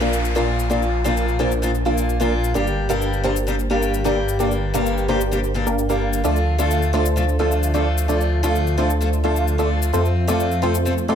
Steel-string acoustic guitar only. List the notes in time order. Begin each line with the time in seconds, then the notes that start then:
0.01 A#2 F3 A#3 D4 F4
0.35 A#2 F3 A#3 D4 F4
0.70 A#2 F3 A#3 D4 F4
1.04 A#2 F3 A#3 D4 F4
1.39 A#2 F3 A#3 D4 F4
1.62 A#2 F3 A#3 D4 F4
1.85 A#2 F3 A#3 D4 F4
2.20 A#2 F3 A#3 D4 F4
2.54 G2 G3 A#3 D4 G4
2.89 G2 G3 A#3 D4 G4
3.24 G2 G3 A#3 D4 G4
3.47 G2 G3 A#3 D4 G4
3.70 G2 G3 A#3 D4 G4
4.04 G2 G3 A#3 D4 G4
4.39 G2 G3 A#3 D4 G4
4.74 G2 G3 A#3 D4 G4
5.08 G2 G3 A#3 D4 G4
5.31 G2 G3 A#3 D4 G4
5.54 G2 G3 A#3 D4 G4
5.89 G2 G3 A#3 D4 F4
6.24 F3 A3 D4 F4
6.58 F3 A3 D4 F4
6.93 F3 A3 D4 F4
7.16 F3 A3 D4 F4
7.39 F3 A3 D4 F4
7.74 F3 A3 D4 F4
8.08 F3 A3 D4 F4
8.43 F3 A3 D4 F4
8.77 F3 A3 D4 F4
9.01 F3 A3 D4 F4
9.24 F3 A3 D4 F4
9.58 F3 A3 D4 F4
9.93 F3 A3 C4 F4
10.27 F3 A3 C4 F4
10.62 F3 A3 C4 F4
10.85 F3 A3 C4 F4
11.08 F3 A3 C4 F4